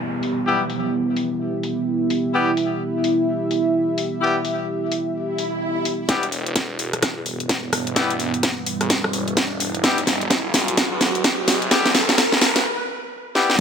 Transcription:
Already playing: analog synth pad B3 E4 G4 E5, downlifter
0.23 open hi-hat
0.46 horn section G3 B3 E4 G4
0.70 open hi-hat
1.16 open hi-hat
1.63 open hi-hat
2.10 open hi-hat
2.34 horn section G3 B3 E4 G4
2.57 open hi-hat
3.04 open hi-hat
3.51 open hi-hat
3.98 open hi-hat
4.21 horn section G3 B3 E4 G4
4.45 open hi-hat
4.92 open hi-hat
5.15 swell
5.38 open hi-hat
5.85 open hi-hat
6.09 detuned saw bass E1, horn section G3 B3 E4 G4, analog synth pad G3 B3 E4 B4, kick, snare, closed hi-hat, riser
6.23 closed hi-hat
6.32 open hi-hat
6.46 detuned saw bass E1, closed hi-hat
6.56 kick, snare, closed hi-hat
6.79 detuned saw bass E1, open hi-hat
6.93 cross-stick, closed hi-hat
7.03 kick, cross-stick, snare, closed hi-hat
7.17 detuned saw bass E2
7.26 detuned saw bass E1, open hi-hat
7.40 closed hi-hat
7.49 kick, snare, closed hi-hat
7.73 detuned saw bass E1, cross-stick, open hi-hat
7.87 closed hi-hat
7.96 detuned saw bass E1, horn section G3 B3 E4 G4, kick, snare, closed hi-hat
8.10 closed hi-hat
8.20 open hi-hat
8.34 closed hi-hat
8.43 kick, snare, closed hi-hat
8.66 open hi-hat
8.81 detuned saw bass E1, cross-stick, closed hi-hat
8.90 kick, snare, closed hi-hat
9.04 kick, cross-stick
9.13 detuned saw bass E1, open hi-hat
9.28 closed hi-hat
9.37 detuned saw bass E1, kick, snare, closed hi-hat
9.60 open hi-hat
9.75 closed hi-hat
9.84 detuned saw bass E1, horn section G3 B3 E4 G4, analog synth pad F#4, kick, snare, closed hi-hat
9.98 closed hi-hat
10.07 snare, open hi-hat
10.21 detuned saw bass E1, closed hi-hat
10.30 kick, snare, closed hi-hat
10.54 detuned saw bass E1, snare, open hi-hat
10.68 closed hi-hat
10.77 kick, snare, closed hi-hat
10.92 detuned saw bass E2
11.01 detuned saw bass E1, snare, open hi-hat
11.15 closed hi-hat
11.24 kick, snare, closed hi-hat
11.48 detuned saw bass E1, snare, open hi-hat
11.62 closed hi-hat
11.71 detuned saw bass E1, horn section G3 B3 E4 G4, kick, snare, closed hi-hat
11.86 snare, closed hi-hat
11.95 snare, open hi-hat
12.09 detuned saw bass E1, snare, closed hi-hat
12.18 detuned saw bass E1, kick, snare, closed hi-hat
12.32 snare
12.41 snare, open hi-hat
12.56 snare, closed hi-hat
13.35 horn section G3 B3 E4 G4, snare
13.50 snare

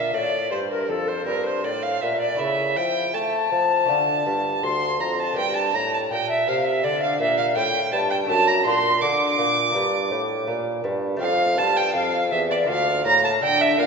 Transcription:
Already playing: lute A#2 D4 F4, bassoon A#2, flute E5, violin E5
0.13 bassoon A2, lute A2, violin D5, flute E5
0.18 flute D5
0.51 bassoon G2, lute G2, flute C5, violin C5
0.70 violin A#4, flute A#4
0.89 bassoon F2, lute F2, violin A4, flute A4
1.08 flute C5, violin C5
1.26 bassoon G2, lute G2, violin A#4, flute C5
1.32 flute A#4
1.46 violin C5, flute C5
1.64 bassoon A2, lute A2, violin D5, flute D5
1.83 violin F5, flute F5
2.01 lute A#2, bassoon A#2, violin E5, flute E5
2.20 violin D5, flute D5
2.35 lute A3 E4
2.39 lute C#3, bassoon C#3, violin E5, flute E5
2.76 lute F3, bassoon F3, violin G5, flute G5
3.14 bassoon A3, lute A3, flute A5, violin A5
3.52 bassoon F3, lute F3
3.85 bassoon D3, lute A3 D4 F4
3.89 lute D3
4.26 bassoon G2, lute G2
4.63 bassoon D2, lute D2, violin C6, flute C6
5.00 bassoon F2, lute F2, flute A#5, violin A#5
5.19 flute A5, violin A5
5.33 lute A#3 D4 G4
5.37 lute G2, bassoon G2, flute G5, violin G5
5.56 flute A5, violin A5
5.73 lute A2, bassoon A2, flute A#5, violin A#5
5.91 flute A5, violin A5
6.10 bassoon A#2, lute A#2, flute G5, violin G5
6.29 flute E5, violin E5
6.47 lute C3, bassoon C3, flute F5, violin F5
6.65 flute E5, violin E5
6.83 bassoon D3, lute D3, flute D5, violin D5
7.01 flute F5, violin F5
7.19 bassoon A#2, lute A#2, flute E5, violin E5
7.38 flute F5, violin F5
7.56 bassoon A2, lute A2, violin G5, flute G5
7.92 bassoon G2, lute G2, flute A5, violin A5
8.10 violin G5, flute G5
8.25 lute A3 D4 A4, flute A5, violin A5
8.29 bassoon F#2, lute F#2
8.47 flute A#5, violin A#5
8.65 bassoon A#2, lute A#2, flute C6, violin C6
9.01 bassoon D3, lute D3, flute D6, violin D6
9.38 bassoon A#2, lute A#2
9.70 bassoon G2, lute A#3 A#4
9.75 lute G2
10.11 bassoon A2, lute A2
10.47 lute A#2, bassoon A#2
10.84 lute G2, bassoon G2
11.16 lute A3 C4 F4, violin F5, flute G5
11.21 lute F2, bassoon F2, flute F5
11.57 lute G2, bassoon G2, flute A5, violin A5
11.75 flute G5, violin G5
11.94 bassoon F2, lute F2, flute F5, violin F5
12.31 lute E2, bassoon E2, flute E5, violin E5
12.49 flute D5, violin D5
12.64 lute A#3 D4 F4, flute F5
12.68 lute D2, bassoon D2, violin F5
13.05 bassoon A2, lute A2, flute A#5, violin A#5
13.23 flute A5, violin A5
13.41 lute D3, bassoon D3, flute G5, violin G5
13.59 flute E5, violin E5
13.77 bassoon A#2, lute A#2, flute F5, violin F5

